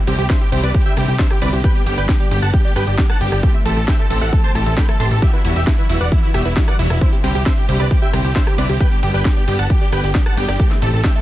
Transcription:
0.07 C2 D3 G3 C4 E4 G4, open hi-hat, ride
0.19 C2 G4, closed hi-hat
0.30 D3 G3 C4 E4 C5 E5, kick, snare, closed hi-hat
0.41 G4, closed hi-hat
0.52 C2 D3 G3 C4 E4 G4 C5, open hi-hat, ride
0.63 C2 G4 B4 D5, closed hi-hat
0.74 D3 G3 C4 E4 G4, kick, closed hi-hat
0.86 G4 E5 G5, closed hi-hat
0.97 C2 D3 G3 C4 E4 G4, cross-stick, open hi-hat, ride
1.08 C2 G4, closed hi-hat
1.19 D3 G3 C4 E4 C5 E5, kick, snare, closed hi-hat
1.30 G4, cross-stick, closed hi-hat
1.42 C2 D3 G3 C4 E4 B4 D5, open hi-hat, ride
1.53 C2 G4, closed hi-hat
1.64 D3 G3 B3 G4 B4 G5, kick, closed hi-hat
1.75 G4, closed hi-hat
1.86 G1 D3 G3 B3 G4 G5, open hi-hat, ride
1.98 G1 B4 D5 G5, closed hi-hat
2.09 D3 G3 B3 G4, kick, snare, closed hi-hat
2.20 G4 D5, closed hi-hat
2.31 G1 D3 G3 B3 G4, open hi-hat, ride
2.42 G1 F#5 A5, closed hi-hat
2.54 D3 G3 B3 G4 G5, kick, closed hi-hat
2.65 G4 D5, closed hi-hat
2.76 G1 D3 G3 B3 G4 B4 G5, cross-stick, open hi-hat, ride
2.87 G1 G4 D5, closed hi-hat
2.98 D3 G3 B3 G4, kick, snare, closed hi-hat
3.10 F#5 A5, cross-stick, closed hi-hat
3.21 G1 D3 G3 B3 G4 G5, open hi-hat, ride
3.32 G1 G4 D5, cross-stick, closed hi-hat
3.43 E3 A3 C4 G4 A4, kick, closed hi-hat
3.54 E5, closed hi-hat
3.65 A1 E3 A3 C4 G4 A4, open hi-hat, ride
3.77 A1 A4, closed hi-hat
3.88 E3 A3 C4 G4 E5 G5 A5, kick, snare, closed hi-hat
3.99 A4 E5, closed hi-hat
4.10 A1 E3 A3 C4 G4 A4, open hi-hat, ride
4.21 A1 A4 E5 F#5, closed hi-hat
4.33 E3 A3 C4 G4 A4, kick, closed hi-hat
4.44 C5 A5, closed hi-hat
4.55 A1 E3 A3 C4 G4 A4 A5, cross-stick, open hi-hat, ride
4.66 A1 A4 E5, closed hi-hat
4.77 E3 A3 C4 G4 A4 G5 B5, kick, snare, closed hi-hat
4.89 A4 E5, cross-stick, closed hi-hat
5.00 A1 E3 A3 C4 G4 A4 A5 C6, open hi-hat, ride
5.11 A1 A4, closed hi-hat
5.22 E3 G3 B3 E4 F#4 G4 E5, kick, closed hi-hat
5.33 E4 B4, closed hi-hat
5.45 E1 E3 G3 B3 E4 F#4, open hi-hat, ride
5.56 E1 G4 E5, closed hi-hat
5.67 E3 G3 B3 E4 F#4 E5, kick, snare, closed hi-hat
5.78 E4 B4, closed hi-hat
5.89 E1 E3 G3 B3 E4 F#4, open hi-hat, ride
6.01 E1 B4 D5 F#5, closed hi-hat
6.12 E3 G3 B3 E4 F#4, kick, closed hi-hat
6.23 E4, closed hi-hat
6.34 E1 E3 G3 B3 F#4 G4 E5, cross-stick, open hi-hat, ride
6.45 E1 E4 B4, closed hi-hat
6.57 E3 G3 B3 E4 F#4, kick, snare, closed hi-hat
6.68 B4 D5 F#5, cross-stick, closed hi-hat
6.79 E1 E3 G3 B3 E4 F#4, open hi-hat, ride
6.90 E1 E4, cross-stick, closed hi-hat
7.01 D3 G3 C4 E4 C5, kick, closed hi-hat
7.13 G4, closed hi-hat
7.24 C2 D3 G3 C4 E4 G4, open hi-hat, ride
7.35 C2 G4, closed hi-hat
7.46 D3 G3 C4 E4 C5 E5, kick, snare, closed hi-hat
7.57 G4, closed hi-hat
7.69 C2 D3 G3 C4 E4 G4 C5, open hi-hat, ride
7.80 C2 G4 B4 D5, closed hi-hat
7.91 D3 G3 C4 E4 G4, kick, closed hi-hat
8.02 G4 E5 G5, closed hi-hat
8.13 C2 D3 G3 C4 E4 G4, cross-stick, open hi-hat, ride
8.24 C2 G4, closed hi-hat
8.36 D3 G3 C4 E4 C5 E5, kick, snare, closed hi-hat
8.47 G4, cross-stick, closed hi-hat
8.58 C2 D3 G3 C4 E4 B4 D5, open hi-hat, ride
8.69 C2 G4, closed hi-hat
8.80 D3 G3 B3 G4 B4 G5, kick, closed hi-hat
8.92 G4, closed hi-hat
9.03 G1 D3 G3 B3 G4 G5, open hi-hat, ride
9.14 G1 B4 D5 G5, closed hi-hat
9.25 D3 G3 B3 G4, kick, snare, closed hi-hat
9.36 G4 D5, closed hi-hat
9.48 G1 D3 G3 B3 G4, open hi-hat, ride
9.59 G1 F#5 A5, closed hi-hat
9.70 D3 G3 B3 G4 G5, kick, closed hi-hat
9.81 G4 D5, closed hi-hat
9.92 G1 D3 G3 B3 G4 B4 G5, cross-stick, open hi-hat, ride
10.04 G1 G4 D5, closed hi-hat
10.15 D3 G3 B3 G4, kick, snare, closed hi-hat
10.26 F#5 A5, cross-stick, closed hi-hat
10.37 G1 D3 G3 B3 G4 G5, open hi-hat, ride
10.48 G1 G4 D5, cross-stick, closed hi-hat
10.60 E3 A3 C4 G4 A4, kick, closed hi-hat
10.71 E5, snare, closed hi-hat
10.82 A1 E3 A3 C4 G4 A4, open hi-hat, ride
10.93 A1 A4, closed hi-hat
11.04 E3 A3 C4 G4 E5 G5 A5, kick, snare, closed hi-hat
11.16 A4 E5, closed hi-hat

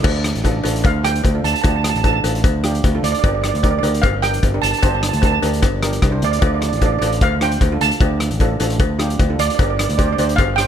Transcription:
Already playing: D5
0.03 D2 D4 F4 A4, kick, crash, cowbell
0.24 cross-stick, closed hi-hat
0.35 A1, closed hi-hat
0.44 D4 F4 A4, kick, closed hi-hat, cowbell
0.64 A1 D4 F4 A4, closed hi-hat, cowbell
0.76 closed hi-hat
0.84 D2 F5, kick, closed hi-hat, cowbell
1.04 D4 F4 A4 G5, cross-stick, closed hi-hat
1.15 closed hi-hat
1.24 D2, kick, closed hi-hat, cowbell
1.35 D4 F4 A4
1.44 D2 A5, closed hi-hat
1.53 A5, closed hi-hat
1.61 D2 D4 F4 G4 A5, kick, closed hi-hat, cowbell
1.68 A5
1.76 A5
1.82 A5, cross-stick, closed hi-hat
1.89 A5
1.95 A1 A5, closed hi-hat
2.04 D4 F4 A4 A5, kick, closed hi-hat, cowbell
2.13 A5
2.24 A1 D4 F4 A4, closed hi-hat, cowbell
2.35 closed hi-hat
2.44 D2, kick, closed hi-hat, cowbell
2.64 D4 F4 G4, cross-stick, closed hi-hat
2.75 closed hi-hat
2.84 D2, kick, closed hi-hat, cowbell
2.95 D4 F4 A4
3.03 D2 D5, closed hi-hat
3.12 D5, closed hi-hat
3.19 D5
3.24 G1 D4 G4 A#4 D5, kick, closed hi-hat, cowbell
3.35 D5
3.42 D5, cross-stick, closed hi-hat
3.49 D5
3.54 D2 D5, closed hi-hat
3.63 D4 G4 A#4 D5, kick, closed hi-hat, cowbell
3.71 D5
3.79 D5
3.83 D2 D4 G4 A#4 D5, closed hi-hat, cowbell
3.94 closed hi-hat
4.02 G1 F5, kick, closed hi-hat, cowbell
4.22 D4 G4 A#4 G5, cross-stick, closed hi-hat
4.34 closed hi-hat
4.43 G1, kick, closed hi-hat, cowbell
4.54 D4 G4 A#4
4.62 G1 A5, closed hi-hat
4.71 A5, closed hi-hat
4.79 A5, cowbell
4.83 G1 D4 G4 C5 A5, kick, closed hi-hat
4.95 A5
5.02 A5, cross-stick, closed hi-hat
5.09 A5
5.13 D2 A5, closed hi-hat
5.22 D4 G4 A#4 A5, kick, closed hi-hat, cowbell
5.32 A5
5.42 D2 D4 G4 A#4, closed hi-hat, cowbell
5.53 closed hi-hat
5.62 G1, kick, cross-stick, closed hi-hat, cowbell
5.82 D4 G4 A#4, cross-stick, closed hi-hat
5.93 closed hi-hat
6.02 C2, kick, cross-stick, closed hi-hat, cowbell
6.12 D4 G4 C5
6.22 D2 D5, closed hi-hat
6.31 D5, closed hi-hat
6.39 D2 D4 F4 A4 D5, kick, closed hi-hat, cowbell
6.46 D5
6.54 D5
6.61 D5, cross-stick, closed hi-hat
6.69 A1 D5, closed hi-hat
6.78 D4 F4 D5, closed hi-hat
6.82 A4, kick, cowbell
6.86 D5
6.92 D5
6.99 A1 D4 F4 A4 D5, closed hi-hat, cowbell
7.07 D5
7.12 closed hi-hat
7.21 D2 F5, kick, closed hi-hat, cowbell
7.41 D4 F4 C5 G5, cross-stick, closed hi-hat
7.52 closed hi-hat
7.61 D2, kick, closed hi-hat, cowbell
7.72 D4 F4 A4
7.81 D2 A5, closed hi-hat
7.91 closed hi-hat
8.01 D2 D4 F4 G4, kick, closed hi-hat, cowbell
8.20 cross-stick, closed hi-hat
8.31 A1, closed hi-hat
8.40 D4 F4 A4, kick, closed hi-hat, cowbell
8.60 A1 D4 F4 A4, closed hi-hat, cowbell
8.70 closed hi-hat
8.79 D2, kick, closed hi-hat, cowbell
8.99 D4 F4 G4, cross-stick, closed hi-hat
9.10 closed hi-hat
9.19 D2, kick, closed hi-hat, cowbell
9.29 D4 F4 A4
9.39 D2 D5, closed hi-hat
9.47 D5, closed hi-hat
9.55 D5
9.59 G1 D4 G4 A#4 D5, kick, closed hi-hat, cowbell
9.70 D5
9.77 D5, cross-stick, closed hi-hat
9.84 D5
9.89 D2 D5, closed hi-hat
9.98 D4 G4 C5 D5, kick, closed hi-hat, cowbell
10.06 D5
10.13 D5
10.18 D2 D4 G4 C5 D5, closed hi-hat, cowbell
10.29 closed hi-hat
10.36 G1 F5, kick, closed hi-hat, cowbell
10.56 D4 G4 C5 G5, cross-stick, closed hi-hat

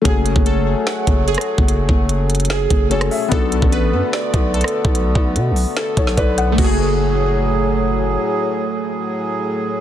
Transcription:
0.02 F#1 F#3 A3 C#4 G#4, kick, closed hi-hat
0.06 F#4 G#4
0.26 closed hi-hat
0.36 F#1, kick
0.46 A4, closed hi-hat
0.87 F#5, snare, closed hi-hat
1.07 F#1, kick, closed hi-hat
1.28 G#4, closed hi-hat
1.34 cross-stick, closed hi-hat
1.41 closed hi-hat
1.58 F#1, kick
1.68 closed hi-hat
1.89 F#1, kick
2.09 closed hi-hat
2.30 closed hi-hat
2.35 closed hi-hat
2.40 closed hi-hat
2.45 closed hi-hat
2.50 G#4, snare, closed hi-hat
2.70 F#1, kick, closed hi-hat
2.89 A3 C#4 F#4 G#4 A4 C#5, closed hi-hat
3.01 cross-stick, closed hi-hat
3.11 E5, open hi-hat
3.28 B1 D3 A3 B3 D4 A4, kick, closed hi-hat
3.33 F#4 A4
3.52 closed hi-hat
3.62 A1, kick
3.72 B4, closed hi-hat
3.93 F#2
4.13 D5, snare, closed hi-hat
4.34 B1, kick, closed hi-hat
4.54 A4, closed hi-hat
4.61 cross-stick, closed hi-hat
4.68 closed hi-hat
4.85 B1, kick
4.95 closed hi-hat
5.15 B1, kick
5.36 B2, closed hi-hat
5.51 B1
5.56 open hi-hat
5.77 A4, snare, closed hi-hat
5.97 B1 C#5, kick, closed hi-hat
6.07 snare
6.17 B1 B4 D5, kick, closed hi-hat
6.38 F#5, closed hi-hat
6.52 A3
6.58 F#1 A2 F#3 F#4 G#4, kick, crash
6.64 G#4

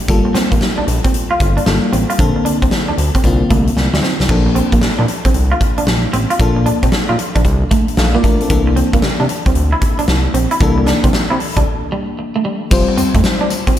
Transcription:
0.08 G1 G3 A#3 F4 A4, kick, closed hi-hat
0.25 muted clean electric guitar stroke
0.35 C4, snare, closed hi-hat
0.52 A1 A#3, kick, closed hi-hat
0.61 snare
0.78 A#1 D4
0.87 A#1, muted clean electric guitar stroke, closed hi-hat
1.04 C4, kick, closed hi-hat
1.14 closed hi-hat
1.31 F4
1.40 G1, muted clean electric guitar stroke, kick, closed hi-hat
1.57 D4, closed hi-hat
1.66 G1 G3 A#3 F4 A4, muted clean electric guitar stroke, snare
1.93 A1 C4, closed hi-hat
2.10 F4, closed hi-hat
2.18 A#1 D3 A#3 C4 A4, kick, closed hi-hat
2.36 muted clean electric guitar stroke
2.45 D4, closed hi-hat
2.62 C2 C4, kick, closed hi-hat
2.71 snare
2.88 D2 D4
2.98 D2, muted clean electric guitar stroke, closed hi-hat
3.15 C4, kick, closed hi-hat
3.24 C2 D3 A#3 C4 F4, kick, closed hi-hat
3.50 C2 A3, kick, closed hi-hat
3.67 closed hi-hat
3.77 C2, muted clean electric guitar stroke, snare
3.93 D2 G3, snare
4.03 C4, snare
4.20 C2, snare
4.29 A#1 F3 A#3 D4 A4, kick, crash
4.46 muted clean electric guitar stroke
4.55 C4, closed hi-hat
4.72 A#1 A#3, kick, closed hi-hat
4.82 A#2, snare
4.99 A#2 D4
5.08 muted clean electric guitar stroke, closed hi-hat
5.25 A#1 C4, kick, closed hi-hat
5.34 C2, closed hi-hat
5.52 F4
5.61 muted clean electric guitar stroke, kick, closed hi-hat
5.78 D4, closed hi-hat
5.87 A#1, muted clean electric guitar stroke, snare
6.13 A1 C4, closed hi-hat
6.30 F4, closed hi-hat
6.39 A#1 F3 A#3 D4 A4, kick, closed hi-hat
6.56 muted clean electric guitar stroke
6.66 D4, closed hi-hat
6.83 A#1 C4, kick, closed hi-hat
6.92 A#2, snare
7.09 A#2 F4
7.19 muted clean electric guitar stroke, closed hi-hat
7.35 A#1 D4, kick, closed hi-hat
7.45 C2, kick, closed hi-hat
7.71 A3, kick, closed hi-hat
7.88 closed hi-hat
7.97 A#1 A4 F5, muted clean electric guitar stroke, snare
8.15 A#3 F4 D5
8.24 A1 A3 D4 A#4, kick, closed hi-hat
8.40 C4 A4, closed hi-hat
8.50 C2 E3 A#3 D4 A4, kick, closed hi-hat
8.67 muted clean electric guitar stroke
8.76 C4, closed hi-hat
8.93 C2 A#3, kick, closed hi-hat
9.02 C3, snare
9.20 C3 D4
9.29 muted clean electric guitar stroke, closed hi-hat
9.46 C2 C4, kick, closed hi-hat
9.55 D2, closed hi-hat
9.72 E4
9.81 muted clean electric guitar stroke, kick, closed hi-hat
9.99 D4, closed hi-hat
10.08 C2, muted clean electric guitar stroke, snare
10.34 A#1 C4, closed hi-hat
10.51 E4, closed hi-hat
10.60 C2 E3 A#3 D4 A4, kick, closed hi-hat
10.78 muted clean electric guitar stroke
10.86 D4, snare, closed hi-hat
11.04 C2 C4, kick, closed hi-hat
11.13 C3, snare
11.30 C3 E4
11.40 muted clean electric guitar stroke, open hi-hat
11.57 C2 D4, kick, closed hi-hat
11.92 G3
12.19 muted clean electric guitar stroke
12.36 A3
12.45 G3
12.71 F1 G3 C4 F4 C5, kick, crash, tambourine
12.89 muted clean electric guitar stroke
12.98 F2 C4, closed hi-hat, tambourine
13.15 F2 A3, kick, closed hi-hat
13.24 snare, tambourine
13.41 D4
13.50 muted clean electric guitar stroke, closed hi-hat, tambourine
13.67 C4, kick, closed hi-hat

